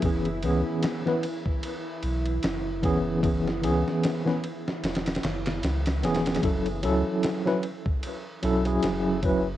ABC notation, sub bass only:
X:1
M:4/4
L:1/8
Q:"Swing 16ths" 1/4=75
K:F#m
V:1 name="Sub bass" clef=bass
F,,, C,, z3 B,,, F,,,2- | F,,, C,, z2 E,,, F,,, C,, E,,, | F,,, C,, z3 B,,, F,,,2 |]